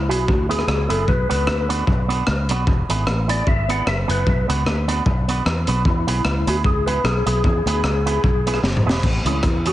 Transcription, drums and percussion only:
0.11 closed hi-hat medium
0.28 kick loud
0.51 closed hi-hat medium
0.59 cross-stick medium
0.68 cross-stick loud
0.90 closed hi-hat loud
1.08 kick loud
1.31 closed hi-hat loud
1.47 cross-stick medium
1.70 closed hi-hat medium
1.87 kick loud
2.10 closed hi-hat medium
2.27 cross-stick loud
2.49 closed hi-hat loud
2.67 kick loud
2.90 closed hi-hat loud
3.07 cross-stick loud
3.29 closed hi-hat loud
3.47 kick loud
3.69 closed hi-hat medium
3.87 cross-stick loud
4.10 closed hi-hat medium
4.27 kick loud
4.50 closed hi-hat medium
4.66 cross-stick medium
4.89 closed hi-hat medium
5.06 kick loud
5.29 closed hi-hat medium
5.46 cross-stick loud
5.67 closed hi-hat medium
5.85 kick loud
6.08 closed hi-hat loud
6.25 cross-stick loud
6.47 closed hi-hat loud
6.64 kick loud
6.88 closed hi-hat medium
7.05 cross-stick loud
7.27 closed hi-hat medium
7.44 kick loud
7.67 closed hi-hat medium
7.84 cross-stick loud
8.07 closed hi-hat loud
8.24 kick medium
8.47 closed hi-hat medium
8.54 cross-stick medium
8.63 snare medium
8.77 mid tom medium
8.89 snare loud
9.03 kick loud
9.03 crash medium
9.26 closed hi-hat medium
9.43 kick loud
9.43 cross-stick loud
9.43 closed hi-hat medium
9.66 closed hi-hat medium

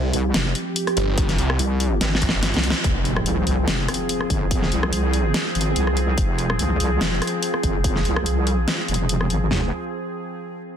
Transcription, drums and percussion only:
0.13 closed hi-hat medium
0.34 snare loud
0.34 closed hi-hat medium
0.55 closed hi-hat medium
0.76 closed hi-hat medium
0.87 cross-stick medium
0.87 closed hi-hat soft
0.97 closed hi-hat medium
1.18 kick loud
1.18 closed hi-hat medium
1.29 snare soft
1.29 closed hi-hat soft
1.38 closed hi-hat medium
1.50 cross-stick medium
1.59 closed hi-hat medium
1.80 closed hi-hat medium
2.01 snare medium
2.01 closed hi-hat medium
2.15 snare medium
2.22 kick medium
2.22 closed hi-hat medium
2.29 snare medium
2.43 snare medium
2.43 closed hi-hat medium
2.54 snare loud
2.54 closed hi-hat soft
2.63 closed hi-hat medium
2.70 snare loud
2.84 kick loud
2.84 closed hi-hat medium
3.05 closed hi-hat soft
3.16 cross-stick medium
3.26 closed hi-hat medium
3.47 closed hi-hat medium
3.68 snare loud
3.68 closed hi-hat medium
3.88 cross-stick medium
3.88 closed hi-hat soft
3.94 closed hi-hat medium
4.09 closed hi-hat medium
4.21 cross-stick medium
4.30 kick medium
4.30 closed hi-hat medium
4.51 kick loud
4.51 closed hi-hat medium
4.62 snare soft
4.72 closed hi-hat medium
4.83 cross-stick medium
4.93 closed hi-hat medium
5.13 closed hi-hat medium
5.34 snare loud
5.34 closed hi-hat medium
5.55 closed hi-hat soft
5.61 closed hi-hat medium
5.76 closed hi-hat medium
5.87 cross-stick medium
5.97 closed hi-hat medium
6.18 kick loud
6.18 closed hi-hat medium
6.38 closed hi-hat medium
6.50 cross-stick medium
6.59 closed hi-hat medium
6.80 closed hi-hat medium
7.01 snare loud
7.01 closed hi-hat medium
7.22 cross-stick medium
7.22 closed hi-hat soft
7.27 closed hi-hat medium
7.43 closed hi-hat medium
7.54 cross-stick soft
7.63 kick medium
7.63 closed hi-hat medium
7.84 kick loud
7.84 closed hi-hat medium
7.96 snare soft
8.05 closed hi-hat medium
8.16 cross-stick medium
8.26 closed hi-hat medium
8.47 closed hi-hat medium
8.68 snare loud
8.68 closed hi-hat medium
8.88 closed hi-hat soft
8.94 closed hi-hat medium
9.09 closed hi-hat medium
9.21 cross-stick soft
9.30 closed hi-hat medium
9.51 snare loud
9.51 floor tom loud

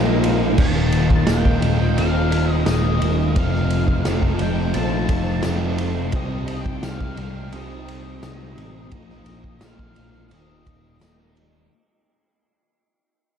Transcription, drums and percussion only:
0.24 ride medium
0.58 kick loud
0.58 crash loud
0.75 snare soft
0.92 ride medium
1.10 kick medium
1.27 snare loud
1.27 ride loud
1.27 tambourine loud
1.45 kick medium
1.62 ride medium
1.98 ride loud
2.32 ride medium
2.66 snare loud
2.66 ride loud
2.66 tambourine medium
3.02 ride medium
3.36 kick loud
3.36 ride loud
3.54 snare soft
3.70 ride medium
3.88 kick medium
4.05 snare loud
4.05 ride loud
4.05 tambourine loud
4.23 kick medium
4.39 ride medium
4.74 ride loud
5.09 kick loud
5.09 ride medium
5.43 snare loud
5.43 ride loud
5.43 tambourine medium
5.78 ride medium
6.12 kick loud
6.12 ride loud
6.48 ride medium
6.66 kick loud
6.83 snare loud
6.83 ride loud
6.83 tambourine loud
7.01 kick loud
7.17 ride medium
7.52 ride loud
7.88 ride medium
8.23 snare loud
8.23 ride loud
8.23 tambourine loud
8.58 ride medium
8.91 kick loud
8.91 ride loud
9.10 snare soft
9.26 ride medium
9.44 kick medium
9.61 snare loud
9.61 ride loud
9.61 tambourine loud
9.79 kick medium
9.96 ride medium
10.31 ride loud
10.67 kick loud
10.67 ride medium
11.01 snare loud
11.01 ride loud
11.01 tambourine loud
11.37 ride medium

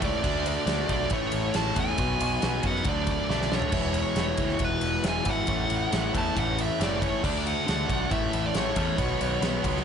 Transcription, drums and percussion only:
0.02 kick medium
0.02 ride medium
0.24 kick loud
0.24 crash medium
0.46 ride medium
0.67 snare loud
0.67 ride loud
0.89 kick medium
0.89 ride medium
1.10 kick loud
1.10 ride loud
1.32 ride medium
1.54 snare loud
1.54 ride loud
1.76 kick medium
1.76 ride medium
1.98 kick loud
1.98 ride loud
2.21 ride medium
2.42 snare loud
2.42 ride loud
2.63 kick medium
2.63 ride medium
2.76 snare soft
2.84 kick loud
2.84 ride loud
3.07 kick medium
3.07 ride medium
3.30 snare medium
3.41 snare medium
3.52 snare loud
3.62 floor tom loud
3.72 kick loud
3.72 crash loud
3.94 ride medium
4.16 snare loud
4.16 ride loud
4.37 kick medium
4.37 ride medium
4.49 snare soft
4.59 kick loud
4.59 ride loud
4.81 ride medium
5.04 snare loud
5.04 ride loud
5.25 kick medium
5.25 ride medium
5.47 kick loud
5.47 ride loud
5.70 ride medium
5.92 snare loud
5.92 ride loud
6.15 kick medium
6.15 ride medium
6.37 kick loud
6.37 ride medium
6.58 ride medium
6.81 snare loud
6.81 ride loud
7.02 kick medium
7.02 ride medium
7.24 kick loud
7.24 crash loud
7.47 ride medium
7.68 snare loud
7.68 ride loud
7.89 kick loud
7.89 ride medium
8.11 kick loud
8.11 ride medium
8.33 ride medium
8.54 snare loud
8.54 ride loud
8.76 kick medium
8.76 ride medium
8.98 kick loud
8.98 ride loud
9.21 ride medium
9.42 snare loud
9.42 ride loud
9.64 kick medium
9.64 ride medium
9.77 snare soft

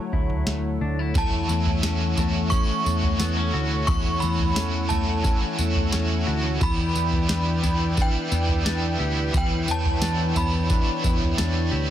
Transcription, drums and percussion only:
0.13 kick medium
0.30 floor tom medium
0.47 snare medium
1.15 kick loud
1.15 floor tom loud
1.15 tambourine medium
1.49 tambourine medium
1.66 floor tom medium
1.83 snare loud
1.83 tambourine medium
2.17 floor tom medium
2.17 tambourine medium
2.51 kick medium
2.51 tambourine medium
2.86 tambourine medium
3.03 floor tom medium
3.20 snare medium
3.20 tambourine medium
3.88 kick loud
3.88 floor tom loud
3.88 tambourine medium
4.22 tambourine medium
4.39 floor tom medium
4.56 snare loud
4.56 tambourine medium
4.90 floor tom medium
4.90 tambourine medium
5.24 kick medium
5.24 tambourine medium
5.59 tambourine medium
5.75 floor tom medium
5.92 snare loud
5.92 tambourine medium
6.61 kick loud
6.61 floor tom loud
6.61 tambourine medium
6.96 tambourine medium
7.13 floor tom medium
7.29 snare loud
7.29 tambourine medium
7.64 floor tom medium
7.64 tambourine medium
7.97 kick loud
7.97 tambourine medium
8.32 tambourine medium
8.49 floor tom medium
8.66 snare loud
8.66 tambourine medium
9.34 kick loud
9.34 floor tom loud
9.34 tambourine medium
9.68 tambourine medium
9.85 floor tom medium
10.02 snare loud
10.02 tambourine loud
10.36 floor tom medium
10.36 tambourine medium
10.70 kick loud
10.70 tambourine medium
11.04 kick medium
11.04 tambourine medium
11.21 floor tom medium
11.38 snare medium
11.38 tambourine medium

